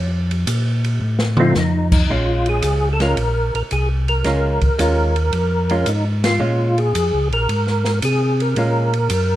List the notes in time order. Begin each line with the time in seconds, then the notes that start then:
Already playing: F2
0.31 ride
0.47 A#2, hi-hat pedal, ride
0.84 ride
1.01 A2
1.19 snare
1.37 F3 A3 C4 D#4 F4, mid tom
1.55 F2 D#4, snare, hi-hat pedal
1.92 kick, crash
2.09 A#1 G#3 C#4 F4
2.46 G#4, ride
2.62 C#2, hi-hat pedal, ride
2.93 A4
3.00 G#3 C#4 F4 A#4, snare, ride
3.17 A#1, ride
3.55 A#1 A#4, ride
3.71 C2 G#4, hi-hat pedal, ride
4.08 A#4, ride
4.24 C#2 G#3 C#4 F4, snare, ride
4.61 C#2, kick, ride
4.78 D#2 G#3 C#4 F4, hi-hat pedal, ride
5.16 ride
5.33 F2, ride
5.69 G#3 C#4 F4, ride
5.86 G#2 D#4, hi-hat pedal, ride
6.24 F4, snare, ride
6.40 A#2 G#3 C#4 F4
6.78 G#4, ride
6.95 F2, hi-hat pedal, ride
7.13 C#2
7.31 A#1 A#4, ride
7.49 G#2, ride
7.67 snare
7.85 snare, ride
8.02 C3 G#4, hi-hat pedal, ride
8.40 A#4, ride
8.56 A#2 G#3 C#4 F4, ride
8.94 ride
9.10 F#2, hi-hat pedal, ride